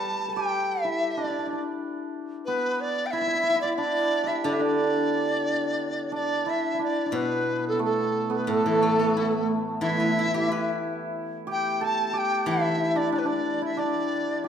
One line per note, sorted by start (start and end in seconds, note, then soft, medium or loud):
0.00 1.14 G3 medium
0.00 0.24 D4 medium
0.00 0.36 G4 medium
0.00 0.28 A4 medium
0.00 2.41 B4 medium
0.00 0.34 A5 medium
0.28 3.21 A4 soft
0.33 3.50 G4 medium
0.33 0.83 G5 medium
0.81 3.13 E4 medium
0.81 1.13 E5 medium
1.11 1.63 D5 medium
1.17 1.24 D4 medium
1.24 1.30 D4 soft
1.30 1.38 D4 soft
1.39 1.46 D4 soft
1.47 1.52 D4 soft
1.52 3.77 D4 soft
2.45 6.61 B3 medium
2.45 2.82 B4 medium
2.80 3.07 D5 medium
3.06 3.12 G5 medium
3.11 3.21 E4 medium
3.11 3.61 E5 loud
3.21 3.27 E4 medium
3.27 3.34 E4 medium
3.35 3.42 E4 medium
3.43 3.49 E4 medium
3.50 3.55 E4 medium
3.56 3.63 E4 medium
3.61 4.26 E4 medium
3.61 3.76 D5 medium
3.76 4.44 D4 medium
3.76 4.28 D5 medium
4.23 6.46 E4 medium
4.23 7.38 G4 medium
4.23 4.46 E5 medium
4.44 6.46 D3 medium
4.44 4.59 D4 medium
4.44 4.54 D5 medium
4.53 4.63 E5 medium
4.59 6.11 D4 medium
4.59 6.13 D5 medium
6.12 6.79 D4 medium
6.12 6.50 D5 medium
6.46 6.74 E4 medium
6.46 6.86 E5 medium
6.74 9.82 E4 soft
6.79 7.06 D4 medium
6.85 7.16 D5 medium
7.06 10.79 D4 soft
7.12 8.48 B2 medium
7.12 7.72 B3 medium
7.12 7.65 B4 medium
7.68 7.82 A4 medium
7.73 8.29 B3 medium
7.79 8.49 A3 medium
7.84 8.38 A4 medium
8.30 12.43 B3 medium
8.37 8.53 B4 medium
8.47 10.48 A2 medium
8.47 8.55 A3 medium
8.51 9.51 A4 medium
8.55 8.63 A3 soft
8.64 9.80 E3 soft
8.64 8.71 A3 soft
8.72 8.78 A3 soft
8.79 8.87 A3 soft
8.79 10.16 A3 soft
8.87 8.93 A3 soft
8.93 9.02 A3 soft
8.99 9.08 A3 soft
8.99 9.99 B3 soft
9.09 9.17 A3 soft
9.17 9.23 A3 soft
9.17 10.18 E4 soft
9.23 9.32 A3 soft
9.32 13.75 A3 soft
9.81 11.80 E3 medium
9.81 9.89 E4 medium
9.81 10.77 E5 loud
9.90 9.96 E4 medium
9.97 11.31 B3 soft
9.97 10.04 E4 medium
10.04 10.10 E4 medium
10.10 10.18 E4 medium
10.19 10.25 E4 medium
10.19 11.49 E4 soft
10.25 10.34 E4 medium
10.34 10.48 E4 medium
10.34 11.65 G4 soft
10.49 12.48 E4 medium
10.49 11.82 B4 soft
11.47 12.13 G4 medium
11.51 11.85 G5 medium
11.81 14.48 A4 medium
11.81 12.19 A5 medium
12.13 14.44 G4 medium
12.18 12.48 G5 medium
12.46 14.43 E3 medium
12.46 12.54 E4 medium
12.46 12.98 E5 medium
12.54 12.59 E4 soft
12.60 12.68 E4 medium
12.69 12.77 E4 medium
12.77 12.83 E4 medium
12.84 13.61 E4 soft
12.95 13.12 D4 medium
12.95 13.13 D5 medium
13.12 13.25 D4 medium
13.12 13.20 D5 medium
13.18 13.28 B4 medium
13.25 13.76 D4 medium
13.25 13.62 D5 medium
13.62 14.48 E4 medium
13.62 13.80 E5 medium
13.77 14.48 D4 medium
13.77 14.48 D5 medium
14.44 14.48 G4 medium